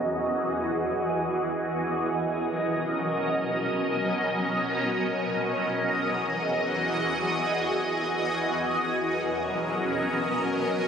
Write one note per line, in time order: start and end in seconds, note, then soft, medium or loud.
0.00 1.75 E2 medium
0.00 1.75 E3 medium
0.00 1.75 F#4 medium
0.00 1.75 G#4 medium
0.00 1.75 D#5 medium
1.79 5.09 B2 medium
1.79 5.09 F#3 medium
1.79 5.09 C#4 medium
1.79 5.09 A#4 medium
1.79 5.09 D#5 medium
5.12 8.42 E2 medium
5.12 8.42 E3 medium
5.12 8.42 F#4 medium
5.12 8.42 G#4 medium
5.12 8.42 D#5 medium
8.45 10.88 B2 medium
8.45 10.88 F#3 medium
8.45 10.88 C#4 medium
8.45 10.88 A#4 medium
8.45 10.88 D#5 medium